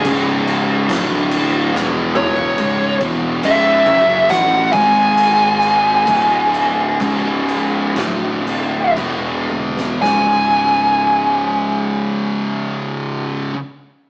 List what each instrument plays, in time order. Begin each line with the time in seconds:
0.04 picked electric bass C#1, distorted electric guitar C#2 G#2 C#3, kick, crash
0.47 crash
0.89 picked electric bass D1, distorted electric guitar D2 A2 D3, kick, snare, crash
1.31 crash
1.74 picked electric bass E1, distorted electric guitar E2 B2 E3, snare
2.16 lead electric guitar C#5, mid tom
2.37 floor tom
2.58 picked electric bass C#1, distorted electric guitar C#2 G#2 C#3, kick, crash
3.01 picked electric bass E1, distorted electric guitar E2 B2 E3, kick, crash
3.43 picked electric bass C#1, distorted electric guitar C#2 G#2 C#3, lead electric guitar E5, crash
3.85 picked electric bass F#1, distorted electric guitar F#2 C#3 F#3, kick, crash
4.29 picked electric bass A1, distorted electric guitar A2 E3 A3, lead electric guitar F#5, snare, crash
4.73 picked electric bass G#1, distorted electric guitar G#2 D#3 G#3, lead electric guitar G#5, kick, crash
5.17 crash
5.62 crash
6.06 picked electric bass D1, distorted electric guitar D2 A2 D3, kick, crash
6.54 crash
7.00 picked electric bass C#1, distorted electric guitar C#2 G#2 C#3, kick, crash
7.48 crash
7.96 picked electric bass D1, distorted electric guitar D2 A2 D3, kick, snare, crash
8.47 crash
8.97 picked electric bass E1, distorted electric guitar E2 B2 E3, kick, crash
9.49 high tom
9.77 snare
10.01 picked electric bass C#1, distorted electric guitar C#2 G#2, lead electric guitar G#5, snare, floor tom
10.05 distorted electric guitar C#3